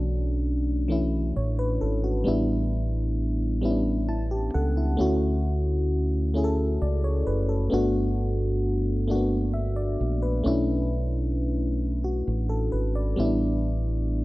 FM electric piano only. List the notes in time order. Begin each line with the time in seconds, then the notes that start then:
Already playing: E3 A3 C#4 D4 F#4
0.88 E3 A3 C#4 E4
1.36 C#5
1.59 B4
1.81 A4
2.04 F#4
2.24 G3 B3 D4 E4
3.61 G3 B3 C#4 E4
3.70 D4
4.08 E4 A5
4.31 G4
4.54 A4 F#5
4.77 E4
4.97 A3 C#4 E4 F#4
6.34 A3 C#4 E4 G#4
6.44 A4
6.82 D5
7.04 C#5
7.27 B4
7.49 A4
7.70 A3 B3 D4 F#4
9.07 A3 A#3 D4 F#4
9.15 B3
9.53 E5
9.76 D5
10.23 B4
10.44 A3 C#4 D4 E4
12.04 F#4
12.50 A4
12.72 B4
12.96 D5
13.16 G3 B3 C#4 E4
13.25 D4